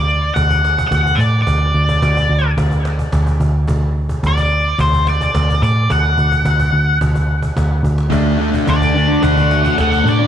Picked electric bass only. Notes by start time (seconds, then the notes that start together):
Already playing: D2
0.36 D2
0.91 D2
1.18 A2
1.47 D2
1.74 D2
2.02 D2
2.29 D2
2.57 D2
3.13 D2
3.40 D2
3.68 D2
4.23 D2
4.78 D2
5.35 D2
5.62 A2
5.90 D2
6.18 D2
6.45 D2
6.73 D2
7.01 D2
7.56 D2
7.83 D2
8.12 D2
8.67 D2
9.23 D2
9.78 D2
10.05 A2